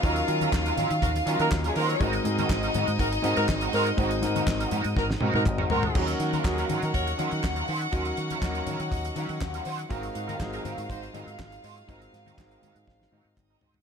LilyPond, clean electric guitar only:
\new Staff \with { instrumentName = "Clean electric guitar" } { \time 4/4 \key ees \dorian \tempo 4 = 122 <ges des' f' bes'>16 r8 <ges des' f' bes'>16 r16 <ges des' f' bes'>16 <ges des' f' bes'>16 r8. <ges des' f' bes'>16 r8 <ges des' f' bes'>16 <ges des' f' c''>16 r16 | <aes c' ges' bes'>16 r8 <aes c' ges' bes'>16 r16 <aes c' ges' bes'>16 <aes c' ges' bes'>16 r8. <aes c' ges' bes'>16 r8 <aes c' ges' bes'>16 <aes c' ges' c''>16 r16 | <aes c' ges' bes'>16 r8 <aes c' ges' bes'>16 r16 <aes c' ges' bes'>16 <aes c' ges' bes'>16 r8. <aes c' ges' bes'>16 r8 <aes c' ges' bes'>16 <aes c' ges' c''>16 r16 | <ges des' f' bes'>16 r8 <ges des' f' bes'>16 r16 <ges des' f' bes'>16 <ges des' f' bes'>16 r8. <ges des' f' bes'>16 r8 <ges des' f' bes'>16 <ges des' f' c''>16 r16 |
<ges des' f' bes'>16 r8 <ges des' f' bes'>16 r16 <ges des' f' bes'>16 <ges des' f' bes'>16 r8. <ges des' f' bes'>16 r8 <ges des' f' bes'>16 <ges des' f' c''>16 r16 | <ges c' ees' bes'>16 r8 <ges c' ees' bes'>16 r16 <ges c' ees' bes'>16 <ges c' ees' bes'>16 r8. <ges c' ees' bes'>16 r8. <ges c' ees' c''>16 r16 | <ges c' ees' bes'>16 r8 <ges c' ees' bes'>16 r16 <ges c' ees' bes'>16 <ges c' ees' bes'>16 r8. <ges c' ees' bes'>16 r8 <ges c' ees' bes'>16 <ges c' ees' c''>16 r16 | }